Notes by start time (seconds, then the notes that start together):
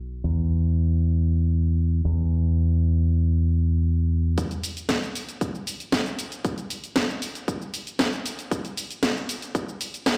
Already playing: B1
0.24 E2
2.05 E2
4.38 kick, closed hi-hat, shaker
4.51 closed hi-hat, shaker
4.64 open hi-hat, shaker
4.77 closed hi-hat, shaker
4.89 kick, snare, closed hi-hat, shaker
5.03 shaker
5.15 open hi-hat, shaker
5.29 closed hi-hat, shaker
5.41 kick, closed hi-hat, shaker
5.55 shaker
5.67 open hi-hat, shaker
5.80 closed hi-hat, shaker
5.92 kick, snare, closed hi-hat, shaker
6.06 closed hi-hat, shaker
6.19 open hi-hat, shaker
6.32 closed hi-hat, shaker
6.45 kick, closed hi-hat, shaker
6.58 closed hi-hat, shaker
6.70 open hi-hat, shaker
6.84 closed hi-hat, shaker
6.96 kick, snare, closed hi-hat, shaker
7.10 shaker
7.22 open hi-hat, shaker
7.35 closed hi-hat, shaker
7.48 kick, closed hi-hat, shaker
7.62 shaker
7.74 open hi-hat, shaker
7.87 closed hi-hat, shaker
7.99 kick, snare, closed hi-hat, shaker
8.13 closed hi-hat, shaker
8.26 open hi-hat, shaker
8.39 closed hi-hat, shaker
8.51 kick, closed hi-hat, shaker
8.65 closed hi-hat, shaker
8.77 open hi-hat, shaker
8.91 closed hi-hat, shaker
9.03 kick, snare, closed hi-hat, shaker
9.17 shaker
9.29 open hi-hat, shaker
9.42 closed hi-hat, shaker
9.55 kick, closed hi-hat, shaker
9.69 shaker
9.81 open hi-hat, shaker
9.94 closed hi-hat, shaker
10.06 kick, snare, closed hi-hat, shaker